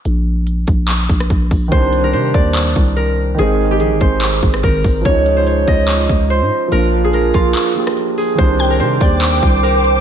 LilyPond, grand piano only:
\new Staff \with { instrumentName = "Grand piano" } { \time 4/4 \key c \minor \tempo 4 = 144 r1 | <ees g c' d'>1 | <ees aes c' ees'>1 | <f aes des' ees'>1 |
<f bes d' f'>2~ <f bes d' f'>8 <f bes d' g'>4. | <ees g c' d'>1 | }